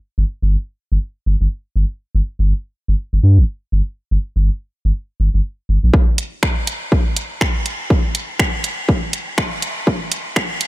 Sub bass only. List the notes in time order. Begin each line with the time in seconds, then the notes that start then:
0.18 G1
0.42 G1
0.92 G1
1.26 G1
1.41 G1
1.76 G1
2.15 G1
2.39 G1
2.88 G1
3.13 G1
3.23 G2
3.38 G1
3.72 G1
4.11 G1
4.36 G1
4.85 G1
5.20 G1
5.34 G1
5.69 G1
5.83 A#1